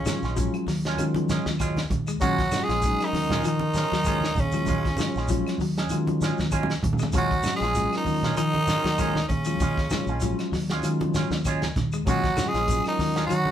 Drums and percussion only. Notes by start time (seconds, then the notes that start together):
0.06 snare, closed hi-hat, high conga, claves, shekere
0.22 snare, shekere
0.37 kick, closed hi-hat, shekere
0.54 closed hi-hat, claves
0.67 snare, open hi-hat, high conga, shekere
0.85 snare, closed hi-hat
0.98 closed hi-hat, high conga, claves, shekere
1.15 closed hi-hat, high conga
1.29 snare, closed hi-hat, shekere
1.46 snare, shekere
1.59 kick, snare, closed hi-hat, claves, shekere
1.76 snare, closed hi-hat, high conga
1.90 kick, closed hi-hat, high conga, low conga, shekere
2.07 claves, shekere
2.21 kick, closed hi-hat, low conga, shekere
2.38 kick, snare, closed hi-hat
2.51 snare, closed hi-hat, high conga, claves, shekere
2.69 snare, closed hi-hat, shekere
2.82 kick, closed hi-hat, shekere
3.00 snare, closed hi-hat, claves
3.14 snare, open hi-hat, high conga, shekere
3.30 snare, closed hi-hat, low conga
3.44 closed hi-hat, claves, shekere
3.59 high conga
3.74 snare, closed hi-hat, shekere
3.91 snare, shekere
4.04 kick, closed hi-hat, claves, shekere
4.21 snare, high conga
4.35 kick, closed hi-hat, low conga, shekere
4.52 closed hi-hat, high conga, claves, shekere
4.66 kick, closed hi-hat, low conga, shekere
4.85 kick, snare, closed hi-hat
4.97 snare, closed hi-hat, high conga, claves, shekere
5.15 snare, shekere
5.28 kick, closed hi-hat, shekere
5.47 snare, closed hi-hat, claves
5.58 open hi-hat, high conga, shekere
5.77 snare, closed hi-hat
5.89 closed hi-hat, high conga, claves, shekere
6.07 closed hi-hat, high conga
6.21 snare, closed hi-hat, high conga, shekere
6.38 snare, shekere
6.42 high conga
6.51 kick, closed hi-hat, high conga, claves, shekere
6.63 low conga
6.70 snare, closed hi-hat
6.83 kick, closed hi-hat, low conga, shekere
6.93 low conga
6.99 snare, claves, shekere
7.03 low conga
7.12 kick, closed hi-hat, low conga, shekere
7.31 kick, closed hi-hat
7.43 snare, closed hi-hat, high conga, claves, shekere
7.61 snare, closed hi-hat, shekere
7.75 kick, closed hi-hat, shekere
7.93 snare, closed hi-hat, claves
8.05 open hi-hat, high conga, shekere
8.23 snare, closed hi-hat, low conga
8.37 closed hi-hat, claves, shekere
8.54 high conga
8.67 snare, closed hi-hat, shekere
8.84 snare, shekere
8.98 kick, closed hi-hat, claves, shekere
9.15 snare, high conga
9.29 kick, closed hi-hat, low conga, shekere
9.45 closed hi-hat, claves, shekere
9.60 kick, closed hi-hat, low conga, shekere
9.77 kick, snare, closed hi-hat
9.90 snare, closed hi-hat, high conga, claves, shekere
10.07 shekere
10.21 kick, closed hi-hat, shekere
10.39 snare, closed hi-hat, claves
10.53 snare, open hi-hat, high conga, shekere
10.69 snare, closed hi-hat
10.83 closed hi-hat, claves, shekere
11.01 closed hi-hat, high conga
11.14 snare, closed hi-hat, shekere
11.31 snare, shekere
11.45 kick, snare, closed hi-hat, claves, shekere
11.62 snare, closed hi-hat, high conga
11.76 kick, snare, closed hi-hat, low conga, shekere
11.93 claves, shekere
12.07 kick, closed hi-hat, low conga, shekere
12.24 kick, snare, closed hi-hat
12.37 snare, closed hi-hat, high conga, claves, shekere
12.54 snare, closed hi-hat, shekere
12.68 kick, closed hi-hat, shekere
12.84 snare, closed hi-hat, claves
12.99 snare, open hi-hat, high conga, shekere
13.16 snare, closed hi-hat
13.29 closed hi-hat, high conga, claves, shekere
13.45 high conga